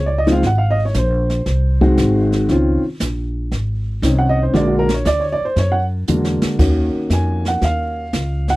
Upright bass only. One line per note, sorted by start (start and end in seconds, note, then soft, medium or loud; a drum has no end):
0.00 0.42 C#2 medium
0.43 0.93 G#1 medium
0.95 1.45 A#1 loud
1.46 1.96 C2 medium
1.98 2.48 G#1 loud
2.49 2.82 C#2 medium
2.83 muted upright bass stroke soft
3.00 3.50 A#1 medium
3.51 4.02 G#1 medium
4.02 4.53 C2 loud
4.54 5.04 A#1 medium
5.05 5.38 D2 loud
5.41 muted upright bass stroke soft
5.56 6.07 F#2 medium
6.08 6.41 E2 medium
6.43 muted upright bass stroke soft
6.59 6.92 D#2 medium
6.95 muted upright bass stroke soft
7.10 7.60 F2 medium
7.62 8.12 D#2 medium
8.13 8.56 C#2 loud